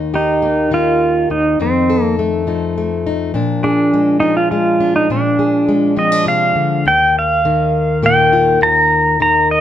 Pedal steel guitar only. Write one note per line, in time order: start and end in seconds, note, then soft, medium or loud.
0.15 0.74 D#4 medium
0.74 1.31 F4 medium
1.31 1.58 D#4 medium
1.62 2.03 C4 medium
2.03 2.15 A#3 medium
3.64 4.20 D4 medium
4.20 4.34 D#4 medium
4.37 4.50 F4 medium
4.51 4.95 F4 medium
4.96 5.10 D#4 medium
5.12 6.54 D4 medium
5.99 6.26 D#5 medium
6.28 6.89 F5 medium
6.88 7.17 G5 medium
7.19 8.05 F5 medium
8.06 8.59 G5 medium
8.63 9.21 A#5 loud
9.22 9.49 A#5 loud
9.51 9.61 D#5 loud